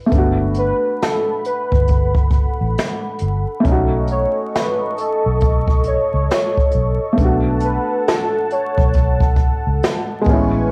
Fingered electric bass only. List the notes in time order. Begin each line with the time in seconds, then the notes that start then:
0.13 G1
1.73 G1
2.61 A1
3.22 G1
3.65 B1
5.26 B1
6.14 C#2
6.75 B1
7.18 B1
8.78 B1
9.67 C#2
10.27 A1